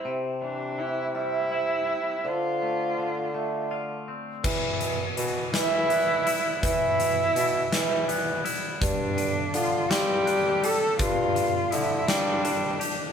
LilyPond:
<<
  \new Staff \with { instrumentName = "Vibraphone" } { \time 6/8 \key e \phrygian \tempo 4. = 55 c''4 r8 e''8 c''4 | c''4 r8 e''8 d''4 | b'4 r8 e''8 d''4 | b'4 r8 e''8 d''4 |
d''4 r8 f''8 d''4 | d''4 r8 f''8 d''4 | }
  \new Staff \with { instrumentName = "Cello" } { \time 6/8 \key e \phrygian r8 d'8 e'8 e'4. | f'2 r4 | r4. e'4. | e'2 r4 |
d'4 f'8 g'4 a'8 | f'4 e'8 d'4 r8 | }
  \new Staff \with { instrumentName = "Clean electric guitar" } { \clef bass \time 6/8 \key e \phrygian c8 e8 e8 g8 e'4 | d8 a8 d8 a8 f'8 c'8 | e,8 b,8 e8 g8 b8 e'8 | e,8 b,8 e8 g8 b8 e'8 |
g,8 d8 f8 c'8 d'8 g'8 | g,8 d8 f8 c'8 d'8 g'8 | }
  \new Staff \with { instrumentName = "Bassoon" } { \clef bass \time 6/8 \key e \phrygian c2. | d2~ d8 r8 | e4 b,8 e4. | e4 b,8 e4 r8 |
g,4 d8 g4. | g,4 d8 g4 r8 | }
  \new DrumStaff \with { instrumentName = "Drums" } \drummode { \time 6/8 r4. r4. | r4. r4. | <cymc bd>8 hh8 hh8 <hh sn>8 hh8 hh8 | <hh bd>8 hh8 hh8 <hh sn>8 hh8 hh8 |
<hh bd>8 hh8 hh8 <hh sn>8 hh8 hh8 | <hh bd>8 hh8 hh8 <hh sn>8 hh8 hh8 | }
>>